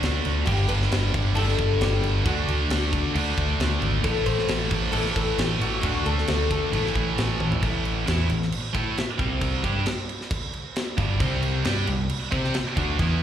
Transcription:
Already playing: D3 A3 D4
0.03 D2, snare, crash
0.25 D2, crash
0.46 G1 G2 D3 G3 G4, kick, crash
0.69 G1 B4, crash
0.82 snare
0.92 G1, snare, crash
1.14 G1, kick, crash
1.35 G1 G2 D3 G3 A4, crash
1.48 snare
1.58 G1, kick, crash
1.81 G1 G4, snare, crash
2.04 G1, crash
2.24 D2 D3 A3 D4 F#4, kick, crash
2.48 D2, crash
2.70 D2, snare, crash
2.93 kick, crash
3.14 D2 D3 A3 D4, crash
3.38 D2, kick, crash
3.60 D2, snare, crash
3.81 G#1, crash
4.03 A1 A2 E3 A3 A4, kick, crash
4.26 A1 C5, crash
4.38 snare
4.48 A1, snare, crash
4.71 A1, kick, crash
4.92 A1 A2 E3 A3 A4, crash
5.06 G4, snare
5.16 A1 A4, kick, crash
5.38 A1 G4, snare, crash
5.60 A1 F#4, crash
5.81 D2 D3 A3 D4 F#4, kick, crash
6.06 D2 A4, crash
6.18 snare
6.28 D2, snare, crash
6.51 A4, kick, crash
6.73 A1 A2 E3 A3, crash
6.86 snare
6.95 A1, kick, crash
7.18 A1, snare, crash
7.40 A1, high tom
7.52 floor tom
7.63 A1 A2 E3 A3, kick, crash
7.85 crash
8.07 E2 E3 B3 E4, snare, crash
8.30 A1 A2 E3, crash
8.42 snare
8.52 crash
8.74 A2 A3 E4 A4, kick, crash
8.96 muted distorted electric guitar stroke, muted picked electric bass stroke, snare, crash
9.18 C2 C3 G3 C4, kick, crash
9.41 kick, crash
9.64 G2 G3 D4 G4, kick, crash
9.86 muted distorted electric guitar stroke, muted picked electric bass stroke, snare, crash
10.09 crash
10.21 snare
10.31 kick, crash
10.53 crash
10.76 snare, crash
10.97 G1 G2 D3 G3, kick, crash
11.19 C2 C3 G3 C4, kick, crash
11.43 crash
11.65 G2 G3 D4 G4, snare, crash
11.87 C2 C3 G3, crash
12.10 crash
12.32 C3 C4 G4 C5, kick, crash
12.44 snare
12.54 muted distorted electric guitar stroke, muted picked electric bass stroke, snare, crash
12.77 D2 D3 A3 D4, kick, crash
12.98 E2 E3 B3 E4, kick, crash

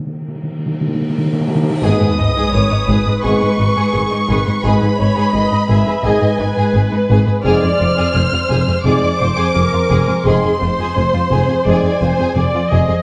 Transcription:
Already playing: cymbal swell
0.06 D#3
0.14 D#3
0.21 D#3
0.28 D#3
0.35 D#3
0.43 D#3
0.51 D#3
0.58 D#3
0.66 D#3
0.73 D#3
0.81 D#3
0.87 D#3
0.94 D#3
1.02 D#3
1.09 D#3
1.18 D#3
1.26 D#3
1.33 D#3
1.41 D#3
1.48 D#3
1.55 D#3
1.63 D#3
1.70 D#3
1.82 G#1 G#2 G#3 B3 G#4 B4 D#6, sub drop
2.01 G#2 G#4
2.18 G#1 G#2 D#4 D#5
2.36 G#2 G#4
2.53 G#1 G#2 G#4 C#5
2.71 G#2 D#4
2.88 G#1 G#2 G#4 B4
3.06 G#2 G#4
3.23 G#1 G#2 G#3 B3 G#4 C#6
3.41 G#2 G#4
3.59 G#1 G#2 D#4
3.76 G#2 G#4
3.93 G#1 G#2 G#4
4.11 G#2 D#4
4.29 G#1 G#2 G#4 B4
4.47 G#2 G#4
4.63 G#1 G#2 G#3 B3 G#4 B4 B5
4.81 G#2 G#4
4.98 G#1 G#2 D#4 C#5
5.16 G#2 G#4
5.34 G#1 G#2 G#4 D#5
5.52 G#2 D#4
5.68 G#1 G#2 G#4 E5
5.86 G#2 G#4
6.04 G#1 G#2 G#3 B3 G#4 D#5 G#5
6.21 G#2 G#4
6.39 G#1 G#2 D#4 B4
6.56 G#2 G#4
6.73 G#1 G#2 G#4
6.91 G#2 D#4
7.09 G#1 G#2 G#4
7.27 G#2 G#4
7.43 F1 F2 G#2 G#3 C4 G#4 C5 D5 F6
7.61 F2 G#4
7.79 F1 F2 F4
7.97 F2 G#4
8.14 F1 F2 G#4 C5
8.32 F2 F4
8.50 F1 F2 G#4
8.67 F2 G#4
8.84 F1 F2 G#2 G#3 C4 G#4 D5 D6
9.02 F2 G#4
9.20 F1 F2 F4 C5
9.37 F2 G#4
9.55 F1 F2 G#4 A#4
9.73 F2 F4
9.90 F1 F2 G#4
10.07 F2 G#4
10.24 F1 F2 G#2 G#3 C4 G#4 C5 C6
10.43 F2 G#4
10.60 F1 F2 F4 C5
10.78 F2 G#4
10.95 F1 F2 G#4
11.13 F2 F4
11.30 F1 F2 G#4
11.48 F2 G#4
11.65 F1 F2 G#2 G#3 C4 G#4 D5 G#5
11.82 F2 G#4
12.00 F1 F2 F4 C5
12.18 F2 G#4
12.36 F1 F2 G#4 D5
12.53 F2 F4
12.71 F1 F2 G#4 D#5
12.89 F2 G#4

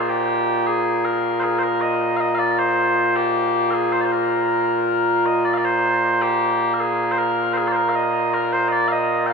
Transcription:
Already playing: A#2 A#3
0.09 G4
0.66 G#4
1.05 A#4
1.40 G#4 C5
1.59 C5
1.63 A#4
1.81 D#5
2.16 D#5 F5
2.35 F5
2.39 D5
2.58 C5
3.16 G4
3.70 G#4 A#4
3.92 C5
4.01 C5 D5
4.12 A#4
5.26 D#5
5.45 D5
5.54 F5
5.58 D5
5.65 C5
6.22 G4
6.74 A#4
6.80 G#4
7.12 C5
7.18 A#4
7.54 G#4 C5
7.68 D5
7.72 C5
7.76 A#4
7.89 F5
7.95 D#5
8.34 A#4
8.53 C5
8.68 D5 D#5
8.88 D#5 F5
9.26 F5 G5

